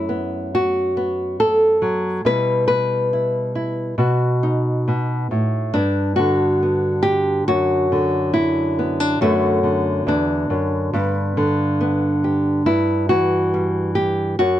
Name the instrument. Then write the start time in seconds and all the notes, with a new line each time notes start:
nylon-string guitar
Already playing: F#2 A3 E4
0.09 B3
0.55 F#4
0.97 B3
1.40 A4
1.82 F#3
2.25 B2 G3 E4 B4
2.68 B4
3.13 E4
3.55 E4
3.98 B2 F#4
4.43 D#4
4.88 B2
5.31 A2
5.74 G2 D4
6.16 D3 F#4
6.63 B3
7.03 G4
7.48 F#2 F#4
7.92 D3
8.34 E4
8.79 B3
9.00 D4
9.21 F#2 D3 A3 B3 F#4
9.63 D3
10.07 E2 D4
10.50 F#2
10.93 G2 B3
11.37 D3
11.81 B3
12.24 G4
12.66 G2 E4
13.09 E3 F#4
13.54 G3
13.95 G4
14.39 F#2 F#4